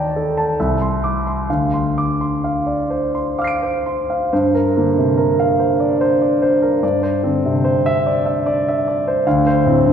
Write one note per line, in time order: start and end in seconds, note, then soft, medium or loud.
0.00 0.54 D#2 soft
0.00 0.28 D5 soft
0.00 0.60 G5 soft
0.00 0.38 A5 soft
0.00 0.59 A#5 soft
0.16 0.49 A4 soft
0.38 0.58 A5 soft
0.60 1.46 C2 soft
0.60 0.94 E5 soft
0.82 1.16 C6 soft
1.04 1.25 D6 soft
1.27 1.49 C6 soft
1.50 4.28 D2 soft
1.50 1.87 F5 soft
1.74 2.10 C6 soft
1.98 2.20 D6 soft
2.21 2.58 C6 soft
2.44 2.81 F5 soft
2.67 3.04 D5 soft
2.90 3.28 C5 soft
3.15 3.52 C6 soft
3.39 3.76 F5 soft
3.39 4.28 D6 soft
3.39 4.29 F6 soft
3.44 4.31 C7 soft
3.44 4.32 D7 soft
3.62 4.00 C5 soft
3.86 4.23 C6 soft
4.10 4.32 F5 soft
4.33 6.80 G2 soft
4.33 4.67 C5 soft
4.55 4.89 A#4 soft
4.77 5.10 D3 soft
4.77 5.43 A#3 soft
4.98 5.18 C3 soft
5.17 5.50 A#4 soft
5.40 5.72 F5 soft
5.59 5.92 C5 soft
5.80 6.00 D5 soft
6.01 6.34 C5 soft
6.22 6.42 D5 soft
6.42 6.75 C5 soft
6.62 6.83 A#4 soft
6.83 9.22 G2 soft
6.83 7.15 D5 soft
7.03 7.35 C5 soft
7.23 7.55 D3 soft
7.23 7.88 C4 soft
7.45 7.65 C3 soft
7.64 7.97 C5 soft
7.86 8.18 E5 medium
8.06 8.39 D5 soft
8.26 8.46 E5 soft
8.46 8.79 D5 medium
8.68 8.88 E5 soft
8.87 9.18 D5 soft
9.08 9.26 C5 soft
9.27 9.93 D2 medium
9.27 9.57 F5 medium
9.47 9.77 C5 medium
9.66 9.93 A2 soft
9.66 9.93 C4 soft
9.86 9.93 G2 soft